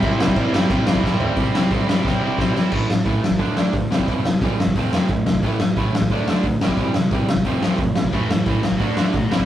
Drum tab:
CC |x---x---x-------|----------------|x---------------|----------------|
HH |----------------|o---o-----------|----o---o---o---|o---o---o---o---|
SD |--o---o---o-o---|--o---o-o---o-o-|--o---o---o---o-|--o---o---o---o-|
FT |--------------o-|----------------|----------------|----------------|
BD |o--oo---o--oo---|o---o---o---o---|o---o--oo---o--o|o---o--oo---o--o|

CC |----------------|----------------|----------------|
HH |o---o---o---o---|o---o---o---o---|o---o---o---o---|
SD |--o---o---o---o-|--o---o---o---o-|--o---o---o---o-|
FT |----------------|----------------|----------------|
BD |o---o--oo---o--o|o---o--oo---o--o|o---o--oo---o--o|